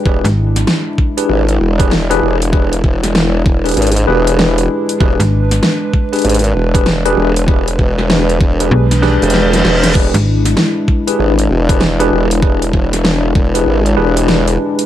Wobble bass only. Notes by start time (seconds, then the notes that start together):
0.06 E1
1.29 G#1
1.60 E1
2.22 E1
2.84 E1
3.46 E1
3.77 G#1
4.08 E1
5.01 E1
6.24 G#1
6.55 E1
7.17 E1
7.79 E1
8.41 E1
9.22 E1
9.64 E1
9.95 E1
11.19 G#1
11.50 E1
12.12 E1
12.73 E1
13.35 E1
13.66 G#1
13.97 E1